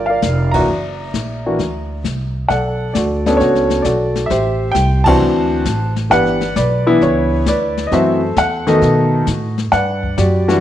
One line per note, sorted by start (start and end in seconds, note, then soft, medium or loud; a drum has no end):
0.00 0.21 G1 medium
0.00 0.65 F4 medium
0.06 0.65 A#4 medium
0.06 0.54 D5 medium
0.06 0.49 F5 medium
0.22 0.67 F1 medium
0.22 kick soft
0.22 snare medium
0.22 hi-hat pedal medium
0.51 0.67 E3 medium
0.51 0.67 A#3 medium
0.51 0.68 D4 medium
0.51 0.67 F#4 medium
0.51 2.30 A#5 medium
0.51 kick medium
0.51 ride medium
0.56 2.32 D5 medium
0.56 2.32 E5 medium
0.68 1.12 F#1 medium
0.68 brush sweep soft
1.14 1.58 A#1 medium
1.14 kick soft
1.14 snare medium
1.14 hi-hat pedal soft
1.46 1.58 E3 medium
1.46 1.58 A#3 soft
1.46 1.58 D4 medium
1.46 1.59 F#4 medium
1.59 2.03 D2 medium
1.59 brush sweep soft
1.59 kick soft
1.59 snare soft
2.04 2.48 C2 medium
2.04 kick soft
2.04 snare soft
2.04 hi-hat pedal soft
2.48 2.93 B1 medium
2.48 2.95 A4 medium
2.48 2.92 D5 medium
2.48 2.91 F#5 medium
2.48 brush sweep soft
2.48 kick soft
2.48 snare soft
2.94 3.39 D2 medium
2.94 3.40 F#4 soft
2.94 3.26 A4 soft
2.94 3.41 D5 medium
2.94 kick soft
2.94 snare medium
2.94 hi-hat pedal medium
3.26 3.83 B3 medium
3.26 3.83 C#4 medium
3.26 3.83 D4 medium
3.26 3.40 A4 medium
3.26 snare soft
3.37 3.84 C#2 medium
3.37 3.80 C#5 medium
3.37 brush sweep soft
3.37 kick soft
3.37 snare soft
3.41 3.84 F#4 medium
3.41 3.84 A4 medium
3.55 snare soft
3.70 snare soft
3.82 4.29 B1 medium
3.82 4.28 F#4 medium
3.82 4.28 A4 medium
3.82 4.30 D5 medium
3.82 kick soft
3.82 snare medium
3.82 hi-hat pedal medium
4.15 snare soft
4.26 4.74 A1 medium
4.26 4.75 E5 medium
4.26 brush sweep soft
4.26 kick soft
4.26 snare soft
4.30 5.17 G4 medium
4.30 5.06 C5 medium
4.72 5.19 C2 loud
4.72 5.05 G5 loud
4.72 kick soft
4.72 snare medium
4.72 hi-hat pedal soft
5.04 5.63 E3 medium
5.04 5.64 C4 medium
5.04 5.63 D4 medium
5.04 5.64 F#4 medium
5.04 5.93 C5 medium
5.04 5.93 F#5 medium
5.04 5.92 A5 medium
5.04 kick medium
5.04 crash medium
5.20 5.64 D2 medium
5.20 brush sweep soft
5.65 6.09 A1 medium
5.65 kick soft
5.65 snare medium
5.65 hi-hat pedal medium
5.96 snare soft
6.10 6.55 G1 medium
6.10 6.38 E3 medium
6.10 6.39 B3 medium
6.10 6.38 D4 medium
6.10 6.39 G4 medium
6.10 6.56 B4 medium
6.10 6.55 D5 medium
6.10 6.53 F#5 medium
6.10 brush sweep soft
6.10 kick soft
6.10 snare soft
6.26 snare soft
6.41 snare soft
6.56 7.00 B1 loud
6.56 7.43 B4 medium
6.56 7.03 D5 medium
6.56 kick soft
6.56 snare medium
6.56 hi-hat pedal medium
6.86 7.43 E3 medium
6.86 7.43 B3 medium
6.86 7.44 D4 medium
6.86 7.02 E4 loud
7.01 7.45 C#2 medium
7.01 7.89 E4 medium
7.01 7.49 C#5 medium
7.01 brush sweep soft
7.01 kick soft
7.01 snare soft
7.46 7.90 D2 medium
7.46 7.90 B4 medium
7.46 7.89 D5 medium
7.46 kick soft
7.46 snare medium
7.46 hi-hat pedal medium
7.77 snare soft
7.87 7.91 D#5 medium
7.91 8.35 F#2 medium
7.91 8.20 E3 medium
7.91 8.20 A3 medium
7.91 8.20 C4 medium
7.91 8.20 F#4 medium
7.91 8.66 A4 medium
7.91 8.79 C5 medium
7.91 8.39 E5 medium
7.91 brush sweep soft
7.91 kick soft
7.91 snare soft
8.37 8.81 E2 medium
8.37 8.66 F#5 medium
8.37 kick soft
8.37 snare medium
8.37 hi-hat pedal soft
8.67 9.24 D#3 medium
8.67 9.24 A3 medium
8.67 9.24 B3 medium
8.67 9.55 F#4 medium
8.67 9.24 A4 medium
8.67 9.55 D#5 medium
8.67 snare soft
8.81 9.26 B2 medium
8.81 brush sweep soft
8.81 kick soft
8.81 snare soft
9.27 9.71 A2 medium
9.27 kick soft
9.27 snare medium
9.27 hi-hat pedal medium
9.58 snare soft
9.72 10.16 G2 medium
9.72 10.59 B4 medium
9.72 10.16 D5 medium
9.72 10.19 F#5 medium
9.72 brush sweep soft
9.72 kick soft
9.72 snare soft
10.03 kick medium
10.18 10.60 F#2 loud
10.18 10.47 F#4 medium
10.18 10.60 G4 medium
10.18 10.60 D5 medium
10.18 snare medium
10.18 hi-hat pedal medium
10.48 10.60 E3 medium
10.48 10.60 G3 medium
10.48 10.60 D4 medium
10.48 10.60 F#4 medium
10.48 snare soft